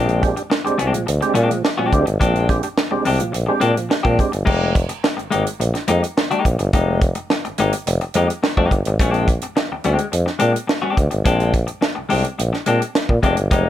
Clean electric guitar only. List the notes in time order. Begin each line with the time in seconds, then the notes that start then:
Already playing: G#3 C4 D4 G4
0.37 muted clean electric guitar stroke
0.50 muted clean electric guitar stroke
0.65 muted clean electric guitar stroke
0.78 G#3 C4 D4 G4
0.93 muted clean electric guitar stroke
1.06 muted clean electric guitar stroke
1.21 muted clean electric guitar stroke
1.34 G#3 C4 D4 G4
1.50 muted clean electric guitar stroke
1.64 muted clean electric guitar stroke
1.78 G#3 C4 D4 G4
1.92 muted clean electric guitar stroke
2.06 muted clean electric guitar stroke
2.20 G#3 C4 D4 G4
2.64 muted clean electric guitar stroke
2.78 muted clean electric guitar stroke
2.91 muted clean electric guitar stroke
3.05 G#3 C4 D4 G4
3.19 muted clean electric guitar stroke
3.32 muted clean electric guitar stroke
3.46 muted clean electric guitar stroke
3.60 G#3 C4 D4 G4
3.75 muted clean electric guitar stroke
3.89 muted clean electric guitar stroke
4.03 G#3 C4 D4 G4
4.18 muted clean electric guitar stroke
4.32 muted clean electric guitar stroke
4.45 G#3 A#3 D#4 G4
4.89 muted clean electric guitar stroke
5.04 muted clean electric guitar stroke
5.17 muted clean electric guitar stroke
5.31 G#3 A#3 D#4 G4
5.45 muted clean electric guitar stroke
5.60 muted clean electric guitar stroke
5.74 muted clean electric guitar stroke
5.88 G#3 A#3 D#4 G4
6.03 muted clean electric guitar stroke
6.17 muted clean electric guitar stroke
6.31 G#3 A#3 D#4 G4
6.45 muted clean electric guitar stroke
6.59 muted clean electric guitar stroke
6.73 G#3 A#3 D#4 G4
7.15 muted clean electric guitar stroke
7.31 muted clean electric guitar stroke
7.45 muted clean electric guitar stroke
7.59 G#3 A#3 D#4 G4
7.73 muted clean electric guitar stroke
7.87 muted clean electric guitar stroke
8.01 muted clean electric guitar stroke
8.15 G#3 A#3 D#4 G4
8.28 muted clean electric guitar stroke
8.43 muted clean electric guitar stroke
8.57 G#3 A#3 D#4 G4
8.72 muted clean electric guitar stroke
8.87 muted clean electric guitar stroke
9.00 G3 B3 C#4 F#4
9.11 G#3 C4 D4 G4
9.43 muted clean electric guitar stroke
9.56 muted clean electric guitar stroke
9.72 muted clean electric guitar stroke
9.85 G#3 C4 D4 G4
9.99 muted clean electric guitar stroke
10.12 muted clean electric guitar stroke
10.26 muted clean electric guitar stroke
10.39 G#3 C4 D4 G4
10.53 muted clean electric guitar stroke
10.67 muted clean electric guitar stroke
10.82 G#3 C4 D4 G4
10.96 muted clean electric guitar stroke
11.11 muted clean electric guitar stroke
11.25 G#3 C4 D4 G4
11.67 muted clean electric guitar stroke
11.81 muted clean electric guitar stroke
11.95 muted clean electric guitar stroke
12.09 G#3 C4 D4 G4
12.24 muted clean electric guitar stroke
12.38 muted clean electric guitar stroke
12.53 muted clean electric guitar stroke
12.66 G#3 C4 D4 G4
12.81 muted clean electric guitar stroke
13.10 muted clean electric guitar stroke
13.23 G#3 C4 D4 G4
13.37 muted clean electric guitar stroke
13.51 G#3 A#3 D#4 G4